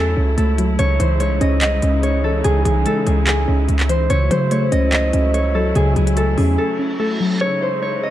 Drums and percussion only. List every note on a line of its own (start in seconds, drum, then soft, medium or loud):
0.38 closed hi-hat medium
0.58 closed hi-hat medium
0.79 closed hi-hat medium
1.00 closed hi-hat medium
1.20 closed hi-hat medium
1.41 closed hi-hat medium
1.61 clap loud
1.61 closed hi-hat medium
1.82 closed hi-hat medium
2.03 closed hi-hat medium
2.44 closed hi-hat medium
2.65 closed hi-hat medium
2.86 closed hi-hat medium
3.07 closed hi-hat medium
3.27 clap loud
3.27 closed hi-hat medium
3.69 closed hi-hat medium
3.80 clap medium
3.80 closed hi-hat soft
3.89 closed hi-hat medium
4.10 closed hi-hat medium
4.31 closed hi-hat medium
4.51 closed hi-hat medium
4.72 closed hi-hat medium
4.92 clap loud
4.92 closed hi-hat medium
5.13 closed hi-hat medium
5.34 closed hi-hat medium
5.75 closed hi-hat medium
5.96 closed hi-hat medium
6.07 closed hi-hat medium
6.17 closed hi-hat medium
6.38 open hi-hat medium